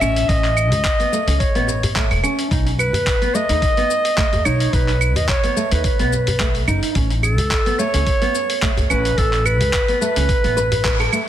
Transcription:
Already playing: clarinet E5
0.01 upright bass A1, nylon-string guitar C#4, claves, shaker
0.16 open hi-hat, shaker
0.28 upright bass A1, nylon-string guitar C#4, clarinet D#5, kick, open hi-hat, shaker
0.44 clap, open hi-hat, shaker
0.57 claves, shaker
0.72 upright bass C#2, open hi-hat, djembe bass, shaker
0.85 kick, clap, open hi-hat, shaker
1.00 nylon-string guitar B3, open hi-hat, shaker
1.12 nylon-string guitar A3, shaker
1.27 upright bass C#2, nylon-string guitar C#4, open hi-hat, djembe slap, shaker
1.40 clarinet C#5, kick, open hi-hat, shaker
1.55 upright bass A1, nylon-string guitar B3, open hi-hat, shaker
1.67 djembe tone, shaker
1.83 open hi-hat, djembe bass, shaker
1.96 nylon-string guitar A3, kick, clap, open hi-hat, shaker
2.11 upright bass E1, open hi-hat, claves, shaker
2.23 nylon-string guitar C#4, claves, shaker
2.39 open hi-hat, shaker
2.51 upright bass B1, nylon-string guitar D#4, kick, open hi-hat, shaker
2.67 open hi-hat, shaker
2.79 clarinet B4, djembe tone, claves, shaker
2.93 upright bass D#2, open hi-hat, djembe bass, shaker
3.07 kick, clap, open hi-hat, djembe slap, shaker
3.22 nylon-string guitar B3, open hi-hat, shaker
3.34 nylon-string guitar A3, clarinet D#5, shaker
3.49 upright bass D#2, nylon-string guitar D#4, open hi-hat, shaker
3.62 kick, open hi-hat, shaker
3.77 nylon-string guitar B3, open hi-hat, shaker
3.90 djembe slap, shaker
4.05 open hi-hat, shaker
4.18 nylon-string guitar A3, kick, clap, open hi-hat, shaker
4.33 upright bass D#2, open hi-hat, djembe bass, shaker
4.45 upright bass B1, nylon-string guitar D#4, clarinet C#5, claves, shaker
4.60 open hi-hat, shaker
4.73 upright bass B1, nylon-string guitar D#4, clarinet B4, kick, open hi-hat, shaker
4.88 clap, open hi-hat, shaker
5.01 claves, shaker
5.16 upright bass D#2, clarinet D#5, open hi-hat, djembe bass, shaker
5.29 clarinet C#5, kick, clap, open hi-hat, shaker
5.44 nylon-string guitar B3, open hi-hat, shaker
5.56 nylon-string guitar A3, shaker
5.72 upright bass D#2, nylon-string guitar D#4, clarinet B4, open hi-hat, djembe slap, shaker
5.84 clarinet B4, kick, open hi-hat, shaker
5.99 upright bass B1, nylon-string guitar B3, open hi-hat, shaker
6.13 djembe tone, shaker
6.27 open hi-hat, djembe bass, shaker
6.40 nylon-string guitar A3, kick, clap, open hi-hat, shaker
6.55 open hi-hat, shaker
6.68 upright bass F#1, nylon-string guitar D#4, claves, shaker
6.83 open hi-hat, shaker
6.95 upright bass A1, nylon-string guitar C#4, kick, open hi-hat, shaker
7.10 open hi-hat, shaker
7.23 clarinet A4, djembe tone, claves, shaker
7.38 upright bass C#2, open hi-hat, djembe bass, shaker
7.51 kick, clap, open hi-hat, shaker
7.66 nylon-string guitar B3, open hi-hat, shaker
7.79 nylon-string guitar A3, clarinet C#5, shaker
7.94 upright bass C#2, nylon-string guitar C#4, open hi-hat, shaker
8.07 kick, open hi-hat, shaker
8.22 nylon-string guitar B3, open hi-hat, shaker
8.34 djembe slap, shaker
8.50 open hi-hat, shaker
8.62 nylon-string guitar A3, kick, clap, open hi-hat, shaker
8.77 upright bass C#2, open hi-hat, djembe bass, shaker
8.90 upright bass A1, nylon-string guitar C#4, clarinet B4, claves, shaker
9.05 open hi-hat, shaker
9.18 upright bass A1, nylon-string guitar C#4, clarinet A4, kick, open hi-hat, shaker
9.33 clap, open hi-hat, shaker
9.45 clarinet B4, djembe tone, claves, shaker
9.61 upright bass C#2, open hi-hat, djembe bass, shaker
9.73 kick, clap, open hi-hat, shaker
9.88 nylon-string guitar B3, open hi-hat, shaker
10.01 nylon-string guitar A3, clarinet B4, shaker
10.16 upright bass C#2, nylon-string guitar C#4, open hi-hat, djembe slap, shaker
10.29 kick, open hi-hat, shaker
10.44 upright bass A1, nylon-string guitar B3, open hi-hat, shaker
10.57 nylon-string guitar B4, djembe tone, shaker
10.72 open hi-hat, djembe bass, shaker
10.85 nylon-string guitar B4, kick, clap, open hi-hat, shaker
11.00 nylon-string guitar A4, open hi-hat, claves, shaker
11.12 nylon-string guitar A3, claves, shaker

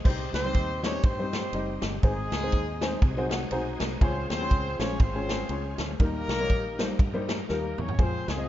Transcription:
Already playing: tonewheel organ G#4, upright piano D#5
0.04 fingered electric bass C2, upright piano C3 G3 C4 D#4 G4 C5, tonewheel organ G3 C4 C#4, horn section C4 D#4 G4 C5, kick, crash
0.10 tonewheel organ D#4
0.33 fingered electric bass C#2, horn section C4 D#4 G4 C5, snare, ride
0.44 upright piano G3 C4 D#4 G4 C5
0.54 fingered electric bass D#2, kick, ride
0.83 upright piano G3 C4 D#4 G4 D#5, horn section C#4 C#5, snare, ride
1.03 fingered electric bass G2, horn section C4 D#4 G4 C5, kick, ride
1.19 upright piano G3 C4 D#4 G4 C5
1.33 snare, ride
1.53 fingered electric bass F#1, upright piano G3 C4 D#4 G4 D#5, ride
1.82 fingered electric bass G1, snare, ride
2.01 fingered electric bass G#1, upright piano G#2 G#3 C4 D#4 G#4 C5, horn section G#3 C4 D#4 G#4, tonewheel organ G#3 B3 D#4, kick, ride
2.10 tonewheel organ C4
2.32 fingered electric bass C#2, snare, ride
2.43 upright piano G#3 C4 D#4 G#4 C5
2.52 fingered electric bass D#2, kick, ride
2.81 upright piano G#3 C4 D#4 G#4 C5, snare, ride
3.02 fingered electric bass C2, upright piano C3, tonewheel organ F#3 G#3 C4 D#4 G#4, kick, ride
3.17 upright piano C4 D#4 F#4 G#4 C5
3.31 upright piano F#5, snare, ride
3.51 fingered electric bass B1, upright piano C4 D#4 F#4 G#4 C5 A#5, ride
3.80 fingered electric bass C2, snare, ride
4.01 fingered electric bass C#2, upright piano C#3 G#3 C#4 F4 G#4 C#5, tonewheel organ G#3 C#4 F4, horn section C4 F4 G#4 C5, kick, ride
4.29 fingered electric bass D#2, horn section C4 F4 G#4 C5, snare, ride
4.41 upright piano G#3 C#4 F4 G#4 C#5
4.51 fingered electric bass C#2, kick, ride
4.79 fingered electric bass A#1, upright piano G#3 C#4 F4 G#4 C5, horn section C#4 C#5, snare, ride
4.99 fingered electric bass G#1, horn section C4 F4 G#4 C5, kick, ride
5.15 upright piano G#3 C#4 F4 G#4 C#5
5.29 snare, ride
5.49 fingered electric bass C#2, upright piano G#3 C#4 F4 G#4 C#5, ride
5.78 fingered electric bass D2, snare, ride
5.99 fingered electric bass D#2, upright piano D#3 G3 A#3 D#4 G4 A#4, horn section A#3 D#4 G4 A#4, tonewheel organ A#3 D#4 G4, kick, ride
6.28 fingered electric bass C2, snare, ride
6.40 upright piano G3 A#3 D#4 G4 C#5
6.50 fingered electric bass A#1, kick, ride
6.79 upright piano G3 A#3 D#4 G4 C5, snare, ride
6.99 fingered electric bass G2, kick, ride
7.14 upright piano G3 A#3 D#4 G4 C5
7.29 snare, ride
7.49 fingered electric bass D#2, upright piano G3 A#3 D#4 G4 A#4, horn section A#3 A#4, snare
7.78 fingered electric bass E2, horn section C#4 C#5, mid tom
7.88 floor tom
7.98 fingered electric bass F2, upright piano G#3 C4 F4 G#4 C5, tonewheel organ C4 F4 G4, horn section C4 F4 G#4 C5, kick, ride
8.05 tonewheel organ G#4
8.28 fingered electric bass C#2, horn section G#3 C4 F4 G#4, snare, ride
8.37 upright piano G#3 C4 F4 G#4 D#5

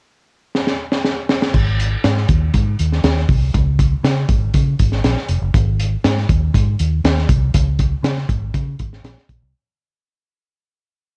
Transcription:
0.55 snare
0.67 snare
0.92 snare
1.05 snare
1.29 snare
1.42 snare
1.54 fingered electric bass G#1, kick, crash
1.80 closed hi-hat
2.04 fingered electric bass G#2, snare, closed hi-hat
2.17 snare
2.29 fingered electric bass D#2, kick, closed hi-hat
2.54 fingered electric bass G#2, kick, closed hi-hat
2.79 fingered electric bass D#2, closed hi-hat
2.93 snare
3.04 fingered electric bass D#2, snare, closed hi-hat
3.17 snare
3.29 fingered electric bass C2, kick, open hi-hat
3.54 fingered electric bass C#2, kick, closed hi-hat
3.79 kick, closed hi-hat
4.04 fingered electric bass C#3, snare, closed hi-hat
4.28 fingered electric bass G#1, kick, closed hi-hat
4.54 fingered electric bass C#3, kick, closed hi-hat
4.79 fingered electric bass G#1, kick, closed hi-hat
4.92 snare
5.04 fingered electric bass A#1, snare, closed hi-hat
5.17 snare
5.28 fingered electric bass F1, closed hi-hat
5.41 fingered electric bass F#1
5.54 fingered electric bass G#1, kick, closed hi-hat
5.80 closed hi-hat
6.04 fingered electric bass G#2, snare, closed hi-hat
6.18 snare
6.29 fingered electric bass D#2, kick, closed hi-hat
6.54 fingered electric bass G#2, kick, closed hi-hat
6.79 fingered electric bass D#2, closed hi-hat
7.04 fingered electric bass D#2, snare, closed hi-hat
7.18 snare
7.29 fingered electric bass C2, kick, closed hi-hat
7.54 fingered electric bass C#2, kick, closed hi-hat
7.79 kick, closed hi-hat
8.03 fingered electric bass C#3, snare, closed hi-hat
8.18 snare
8.29 fingered electric bass G#1, kick, closed hi-hat
8.54 fingered electric bass C#3, kick, closed hi-hat
8.79 fingered electric bass G#1, kick, closed hi-hat
8.93 snare
9.04 fingered electric bass A#1, snare, closed hi-hat
9.18 snare
9.29 fingered electric bass A#1, kick, closed hi-hat
9.42 fingered electric bass C2

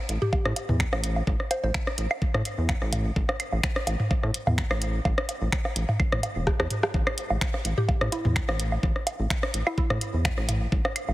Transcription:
0.09 analog synth bass A1, closed hi-hat
0.22 synth pluck G4, mid tom
0.33 kick, low woodblock
0.45 analog synth bass A2, cross-stick
0.56 closed hi-hat, low woodblock
0.69 analog synth bass E2, mid tom
0.80 finger snap, kick, high woodblock
0.93 analog synth bass A1, cross-stick, low woodblock
1.04 closed hi-hat
1.16 low woodblock
1.27 analog synth bass A1, kick
1.40 cross-stick
1.51 synth pluck C5, closed hi-hat, low woodblock
1.64 analog synth bass A1, synth pluck C5
1.74 finger snap, kick, low woodblock
1.87 cross-stick
1.98 analog synth bass A1, closed hi-hat
2.11 high woodblock, low woodblock
2.22 kick
2.34 analog synth bass A2, cross-stick, mid tom, low woodblock
2.45 closed hi-hat
2.58 analog synth bass E2
2.69 finger snap, kick, low woodblock
2.82 analog synth bass A1, cross-stick
2.93 closed hi-hat, mid tom, low woodblock
3.16 analog synth bass A1, kick
3.29 cross-stick, low woodblock
3.40 closed hi-hat, high woodblock
3.52 analog synth bass A1, low woodblock
3.63 finger snap, kick
3.76 cross-stick
3.87 analog synth bass A1, closed hi-hat, low woodblock
4.00 mid tom
4.11 kick, low woodblock
4.23 analog synth bass A2, cross-stick
4.34 closed hi-hat
4.47 analog synth bass E2, mid tom, low woodblock
4.58 finger snap, kick
4.71 analog synth bass A1, cross-stick, high woodblock, low woodblock
4.82 closed hi-hat
5.05 analog synth bass A1, kick, low woodblock
5.18 cross-stick
5.29 closed hi-hat, low woodblock
5.42 analog synth bass A1
5.52 finger snap, kick
5.65 cross-stick, low woodblock
5.76 analog synth bass A1, closed hi-hat
5.89 mid tom, low woodblock
6.00 kick, high woodblock
6.12 analog synth bass A1, cross-stick, mid tom
6.23 closed hi-hat, low woodblock
6.36 analog synth bass E1
6.47 kick, cross-stick, low woodblock
6.60 analog synth bass E2, cross-stick
6.71 closed hi-hat, mid tom
6.83 cross-stick, low woodblock
6.94 analog synth bass A1, kick, low woodblock
7.07 cross-stick, high woodblock
7.18 closed hi-hat
7.30 analog synth bass A1, low woodblock
7.41 finger snap, kick
7.54 cross-stick, low woodblock
7.65 analog synth bass A1, closed hi-hat
7.78 synth pluck G4, mid tom
7.88 kick, low woodblock
8.01 analog synth bass A2, cross-stick
8.12 synth pluck E4, closed hi-hat, low woodblock
8.25 analog synth bass E2, mid tom
8.36 finger snap, kick, high woodblock
8.49 analog synth bass A1, cross-stick, low woodblock
8.60 closed hi-hat
8.72 low woodblock
8.83 analog synth bass A1, kick
8.96 cross-stick
9.07 closed hi-hat, low woodblock
9.20 analog synth bass A1
9.30 finger snap, kick, low woodblock
9.43 cross-stick
9.54 analog synth bass A1, closed hi-hat
9.67 synth pluck E4, high woodblock, low woodblock
9.78 synth pluck E4, kick
9.90 analog synth bass A2, cross-stick, mid tom, low woodblock
10.01 closed hi-hat
10.14 analog synth bass E2
10.25 finger snap, kick, low woodblock
10.38 analog synth bass A1, cross-stick
10.49 closed hi-hat, mid tom, low woodblock
10.72 analog synth bass A1, kick
10.85 cross-stick, low woodblock
10.96 closed hi-hat, high woodblock
11.09 analog synth bass A1, low woodblock

